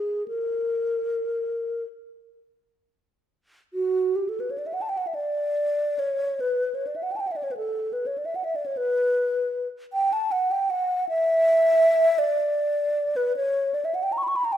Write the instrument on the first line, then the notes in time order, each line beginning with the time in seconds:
alto flute
Already playing: G#4
0.28 A#4
3.74 F#4
4.16 G4
4.29 A4
4.40 B4
4.51 C#5
4.58 D5
4.66 E5
4.73 F#5
4.82 A5
4.89 G5
4.97 F#5
5.07 E5
5.15 D5
5.99 C#5
6.40 B4
6.75 C#5
6.87 D5
6.96 E5
7.03 F#5
7.12 G5
7.16 G5 A5
7.27 F#5
7.32 E5
7.36 D5
7.43 C#5
7.51 B4
7.57 A4
7.93 B4
8.06 C#5
8.18 D5
8.26 E5
8.35 F#5
8.44 E5
8.56 D5
8.66 C#5
8.77 B4
9.93 G5
10.13 A5
10.32 F#5
10.51 G5
10.70 F#5
11.09 E5
12.19 D5
13.16 B4
13.36 C#5
13.74 D5
13.85 E5
13.95 F#5
14.03 G5
14.13 A#5
14.18 C#6
14.23 B5
14.28 C#6
14.36 B5
14.45 A#5
14.53 G5